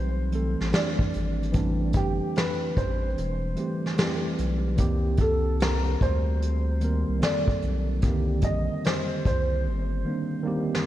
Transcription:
Already playing: B1 E3 G3 A3 C4 G4 C5
0.31 E3 G3 A3 C4, closed hi-hat
0.35 A4
0.61 A1, snare
0.71 E3 G3 A3 C4 D5, snare, closed hi-hat
0.76 D4
0.99 kick
1.14 G#1, closed hi-hat
1.43 closed hi-hat
1.52 A1 E3 G3 A3 C4, kick, closed hi-hat
1.56 D4
1.93 G1 G4, kick, closed hi-hat
2.35 B4, snare, closed hi-hat
2.77 A1 C5, kick, closed hi-hat
3.18 E1, closed hi-hat
3.55 E3 G3 A3 C4, closed hi-hat
3.60 G4
3.86 snare
3.98 E3 G3 A3 C4, snare, closed hi-hat
4.02 G4
4.39 B1, closed hi-hat
4.76 C2 D#3 G3 A#3 C4, kick, closed hi-hat
4.80 G4
5.17 A4, kick, closed hi-hat
5.60 A#4, snare, closed hi-hat
5.84 closed hi-hat
6.01 D2 C5, kick, closed hi-hat
6.43 closed hi-hat
6.81 D#3 G3 A#3 C4 A#4, closed hi-hat
7.09 C2
7.19 D#3 G3 A#3 C4, closed hi-hat
7.23 A4 D5, snare
7.48 kick
7.62 B1, closed hi-hat
8.01 C2 D3 G3 A#3 C4, kick, closed hi-hat
8.05 D#3 G4
8.41 A#1 D#5, kick, closed hi-hat
8.84 C5, snare, closed hi-hat
9.25 C2 C5, kick, closed hi-hat
9.66 G1
10.04 D#3 G3 A#3 C4
10.08 D4
10.43 D#3 G3 A#3 C4
10.47 G4
10.74 snare

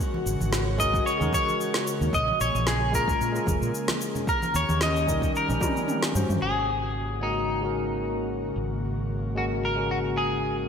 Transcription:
Already playing: C#3 G#3 C#4 F#4 A#4
0.00 C#5, shaker
0.14 high conga
0.26 G#1, shaker
0.40 G#1, high conga, shaker
0.53 snare, shaker
0.78 G#3 C#4 F#4 A#4 D#5, kick, low conga, shaker
0.94 kick, shaker
1.06 C#5, shaker
1.18 D#2 G#3 C#4 F#4, low conga
1.22 A#4, shaker
1.33 C#5, kick, high conga, shaker
1.47 high conga, shaker
1.61 shaker
1.74 snare, shaker
1.87 shaker
2.01 D#2, shaker
2.13 A#1 A#3 G#4 D#5, kick, shaker
2.28 high conga
2.40 A#1 C#5, shaker
2.54 A#1, high conga, shaker
2.67 G#4, snare, shaker
2.92 G#3 C#4 F4 A#4, kick, shaker
3.08 kick, shaker
3.20 A#2, shaker
3.32 G#3 C#4 F4, shaker
3.37 A#4
3.46 F1, kick, high conga, shaker
3.61 A#2, shaker
3.75 shaker
3.88 snare, high conga, shaker
4.01 shaker
4.15 low conga, shaker
4.27 D#3 C#4 G4 A#4, kick, shaker
4.42 high conga, shaker
4.54 D#2 C#5, shaker
4.69 D#2, high conga, shaker
4.81 D#5, snare, shaker
4.96 shaker
5.06 G3 C#4 D#4 A#4, kick, low conga, shaker
5.22 kick, shaker
5.35 A#4, shaker
5.48 A#1 G3 C#4 D#4 A#4, low conga, shaker
5.60 G3 C#4 D#4 A#4, kick, high tom, high conga, shaker
5.76 high conga, shaker
5.88 mid tom, shaker
6.03 snare, mid tom, shaker
6.14 G2 G#3 C#4 F#4 C5, shaker
6.29 G2, mid tom, shaker
6.41 G#1 C#3 A#3 F#4 G#4
7.21 G#3 C#4 D#4 F#4 A#4
7.61 G#3 C#4 F#4
7.66 A#4
8.56 G#1
9.35 G#3 C#4 F#4 A#4
9.65 A#4
9.75 G#3 C#4 F#4
9.80 A#4
9.91 F#4
10.17 G#4

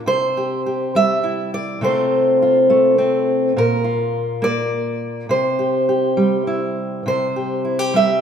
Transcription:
0.06 C3 C5
0.37 G4
0.66 G4
0.95 G3 E5
1.24 E4
1.54 D5
1.81 C3 A3 C4 F4 C5
2.42 F4
2.70 A3
2.98 C4
3.57 A#2 A#4
3.84 F4
4.42 A#3 D5
5.29 C3 C5
5.59 G4
5.89 G4
6.17 G3
6.47 E4
7.06 C3 C5
7.36 G4
7.65 E4
7.79 G4
7.94 G3 E5

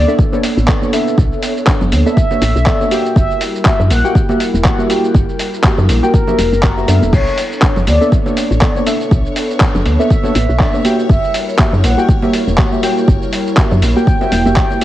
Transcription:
Already playing: B3 D4 A4 C#5 D5
0.08 B3 D4 A4 E5, shaker
0.19 kick, shaker
0.32 B3 D4 A4 C#5, high conga, shaker
0.43 open hi-hat, shaker
0.57 A1, shaker
0.68 B3 D4 A4 D5, kick, clap, shaker
0.82 B3 D4 A4 C#5, high conga, shaker
0.93 B3 D4 A4 E5, open hi-hat, shaker
1.07 shaker
1.18 B1, kick, shaker
1.32 shaker
1.43 open hi-hat, shaker
1.57 shaker
1.67 B3 D4 A4 C#5, kick, clap, shaker
1.81 F#1, low conga, shaker
1.92 D2, open hi-hat, high conga, shaker
2.06 B3 D4 A4 E5, shaker
2.17 kick, shaker
2.31 B3 D4 A4 C#5, high conga, shaker
2.42 A1, open hi-hat, shaker
2.56 B1, shaker
2.66 B3 D4 A4 D5, kick, clap, shaker
2.80 B3 D4 A4 C#5, high conga, shaker
2.91 G3 A#3 E4 F#4 G4 A#4 G5, open hi-hat, shaker
3.06 shaker
3.16 F#1 E5, kick, shaker
3.30 shaker
3.41 open hi-hat, shaker
3.55 shaker
3.65 A#3 F#4 G4 E5, kick, clap, shaker
3.80 F#2, low conga, shaker
3.90 A#1 F#5, open hi-hat, high conga, shaker
4.04 A#3 F#4 G4 G5, shaker
4.15 kick, shaker
4.29 A#3 F#4 G4 E5, high conga, shaker
4.40 open hi-hat, shaker
4.54 E1, shaker
4.64 A#3 F#4 G4 F#5, kick, clap, shaker
4.78 A#3 F#4 G4 E5, high conga, shaker
4.89 A#3 F#4 G4 G5, open hi-hat, shaker
5.04 shaker
5.14 F#1, kick, shaker
5.29 shaker
5.39 open hi-hat, shaker
5.54 shaker
5.64 A#3 F#4 G4 E5, kick, clap, shaker
5.78 F#2, low conga, shaker
5.89 A#1, open hi-hat, high conga, shaker
6.02 A#3 F#4 G4 A#4 G5, shaker
6.14 kick, shaker
6.27 A#3 F#4 G4 E5, high conga, low conga, shaker
6.38 E1, open hi-hat, high conga, shaker
6.52 F#1, shaker
6.63 F#1 A#3 F#4 G4 F#5, kick, clap, shaker
6.77 A#3 F#4 G4 E5, high conga, shaker
6.88 F#2 B3 D4 A4 E5, open hi-hat, shaker
7.02 E1, shaker
7.13 B1 B3 D4 A4 C#5, kick, crash, shaker
7.27 shaker
7.38 open hi-hat, shaker
7.52 shaker
7.62 B3 D4 A4 C#5, kick, clap, shaker
7.76 F#1, low conga, shaker
7.87 D2 D5, open hi-hat, high conga, shaker
8.01 B3 D4 A4 E5, shaker
8.12 kick, shaker
8.26 B3 D4 A4 C#5, high conga, shaker
8.37 open hi-hat, shaker
8.51 A1, shaker
8.61 B3 D4 A4 D5, kick, clap, shaker
8.75 B3 D4 A4 C#5, high conga, shaker
8.86 B3 D4 A4 E5, open hi-hat, shaker
9.01 shaker
9.11 B1 B4, kick, shaker
9.26 shaker
9.36 open hi-hat, shaker
9.50 shaker
9.60 B3 D4 A4 C#5, kick, clap, shaker
9.75 F#1, low conga, shaker
9.85 D2, open hi-hat, high conga, shaker
9.99 B3 D4 A4 E5, shaker
10.10 kick, shaker
10.23 B3 D4 A4 C#5, high conga, shaker
10.35 A1, open hi-hat, shaker
10.49 B1, shaker
10.60 B3 D4 A4 D5, kick, clap, shaker
10.73 B3 D4 A4 C#5, high conga, shaker
10.84 G3 A#3 E4 F#4 G4 A#4 G5, open hi-hat, shaker
10.99 shaker
11.10 F#1 E5, kick, shaker
11.24 shaker
11.34 open hi-hat, shaker
11.49 shaker
11.59 A#3 F#4 G4 E5, kick, clap, shaker
11.73 F#2, low conga, shaker
11.84 A#1 F#5, open hi-hat, high conga, shaker
11.98 A#3 F#4 G4 G5, shaker
12.09 kick, shaker
12.22 A#3 F#4 G4 E5, high conga, shaker
12.34 open hi-hat, shaker
12.47 E1, shaker
12.58 A#3 F#4 G4 F#5, kick, clap, shaker
12.72 A#3 F#4 G4 E5, high conga, shaker
12.83 A#3 F#4 G4 G5, open hi-hat, shaker
12.97 shaker
13.08 F#1, kick, shaker
13.22 shaker
13.33 open hi-hat, shaker
13.47 shaker
13.57 A#3 F#4 G4 E5, kick, clap, shaker
13.71 F#2, low conga, shaker
13.82 A#1, open hi-hat, high conga, shaker
13.96 A#3 F#4 G4 G5, shaker
14.07 kick, shaker
14.21 A#3 F#4 G4 E5, high conga, shaker
14.32 E1, open hi-hat, high conga, shaker
14.45 F#1 A#3 F#4 G4 E5, shaker
14.56 kick, clap, shaker
14.70 high conga, shaker
14.81 A#3

